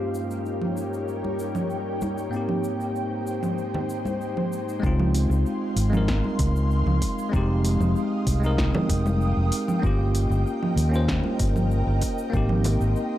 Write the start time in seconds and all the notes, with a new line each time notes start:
Already playing: G2 G3 A#3 C#4 D#4 F4 G4 A#4 C#5 G5
0.14 shaker
0.31 shaker
0.46 shaker
0.62 low conga
0.77 shaker
0.93 shaker
1.08 shaker
1.24 high conga
1.39 shaker
1.55 low conga, shaker
1.70 shaker
2.01 high conga, shaker
2.18 shaker
2.30 G#2 G#3 A#3 C4 C5, shaker
2.34 D#4 G4
2.49 low conga
2.64 shaker
2.81 shaker
2.96 shaker
3.27 shaker
3.43 low conga, shaker
3.58 shaker
3.74 low conga
3.89 shaker
4.05 high conga, shaker
4.21 shaker
4.37 low conga
4.52 shaker
4.69 shaker
4.80 C#2 G#3 C4 F5 C6, kick, shaker
4.84 D#4 F4
5.00 low conga
5.15 open hi-hat, shaker
5.30 C#2, shaker
5.46 shaker
5.76 G#1, open hi-hat, shaker
5.90 G#3 C4, low conga, shaker
5.94 D#4 A#4
6.08 kick, snare, shaker
6.24 high conga
6.39 C#2, kick, open hi-hat, shaker
6.56 shaker
6.71 shaker
6.86 C#2, low conga
7.02 kick, open hi-hat, shaker
7.18 shaker
7.29 G#3 C4 G5, kick
7.33 F1 D#4 G4 D#6, shaker
7.65 open hi-hat, shaker
7.80 F1, low conga, shaker
7.96 shaker
8.27 C2, kick, open hi-hat, shaker
8.40 G#3 C4, shaker
8.44 D#4 A#4
8.58 kick, snare, shaker
8.75 low conga
8.89 F1, kick, open hi-hat, shaker
9.06 high conga, shaker
9.21 shaker
9.37 F1
9.52 open hi-hat, shaker
9.68 low conga, shaker
9.80 G1 A#3 C#4 A#4 D#5, kick
9.84 F4 G4, shaker
10.15 open hi-hat, shaker
10.30 G1, shaker
10.47 shaker
10.63 low conga
10.76 D#2, open hi-hat, shaker
10.89 A#3 C#4
10.94 F4 C5, shaker
11.08 kick, snare, shaker
11.24 high conga
11.39 G1, kick, open hi-hat, shaker
11.56 low conga, shaker
11.71 shaker
11.87 G1
12.02 kick, open hi-hat, shaker
12.18 shaker
12.30 G#1 G#3 A#3 C4 D#5 C6, kick, shaker
12.34 D#4 G4
12.49 low conga
12.64 open hi-hat, low conga, shaker
12.81 G#1, shaker
12.96 shaker